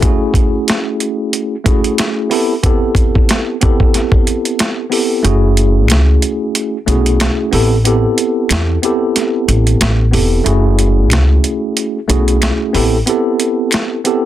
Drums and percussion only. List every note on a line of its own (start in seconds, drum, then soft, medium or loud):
0.02 kick loud
0.02 closed hi-hat medium
0.34 kick loud
0.34 closed hi-hat medium
0.68 snare loud
0.68 closed hi-hat medium
1.00 closed hi-hat medium
1.33 closed hi-hat medium
1.66 kick medium
1.66 closed hi-hat medium
1.84 closed hi-hat medium
1.98 snare loud
1.98 closed hi-hat medium
2.31 open hi-hat medium
2.63 kick loud
2.63 closed hi-hat medium
2.95 kick medium
2.95 closed hi-hat medium
3.15 kick medium
3.29 snare loud
3.29 closed hi-hat medium
3.61 kick loud
3.61 closed hi-hat medium
3.80 kick loud
3.94 snare soft
3.94 closed hi-hat medium
4.12 kick medium
4.27 closed hi-hat medium
4.45 closed hi-hat medium
4.59 snare loud
4.59 closed hi-hat loud
4.92 open hi-hat medium
5.25 closed hi-hat medium
5.57 closed hi-hat medium
5.88 finger snap medium
5.88 snare loud
5.88 closed hi-hat medium
6.22 closed hi-hat medium
6.55 closed hi-hat medium
6.88 closed hi-hat medium
7.06 closed hi-hat medium
7.20 finger snap medium
7.20 snare loud
7.20 closed hi-hat medium
7.53 open hi-hat medium
7.85 closed hi-hat medium
8.18 closed hi-hat medium
8.49 finger snap medium
8.49 snare loud
8.49 closed hi-hat loud
8.83 closed hi-hat medium
9.16 snare soft
9.16 closed hi-hat medium
9.49 closed hi-hat medium
9.67 closed hi-hat medium
9.81 finger snap medium
9.81 snare loud
9.81 closed hi-hat medium
10.13 open hi-hat medium
10.46 closed hi-hat medium
10.79 closed hi-hat medium
11.10 finger snap medium
11.10 snare loud
11.10 closed hi-hat medium
11.44 closed hi-hat medium
11.77 closed hi-hat medium
12.10 closed hi-hat medium
12.28 closed hi-hat medium
12.42 finger snap medium
12.42 snare loud
12.42 closed hi-hat medium
12.74 open hi-hat medium
13.07 closed hi-hat medium
13.40 closed hi-hat medium
13.71 finger snap medium
13.71 snare loud
13.71 closed hi-hat medium
14.05 closed hi-hat medium